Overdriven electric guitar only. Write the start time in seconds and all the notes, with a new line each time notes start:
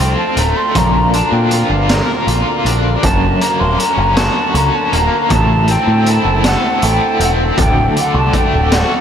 Already playing: F2 A3 F4
0.00 C4
0.38 A3
0.76 A#2
1.14 D4
1.51 F4
1.89 A#4
2.28 F4
2.66 D4
3.03 F#2
3.41 A#3
3.79 C#4
4.17 F#4
4.55 C#4
4.91 A#3
5.32 A2
5.69 C4
6.07 E4
6.45 A4
6.83 E4
7.21 C4
7.59 D2
7.96 D3
8.35 A3
8.73 F#4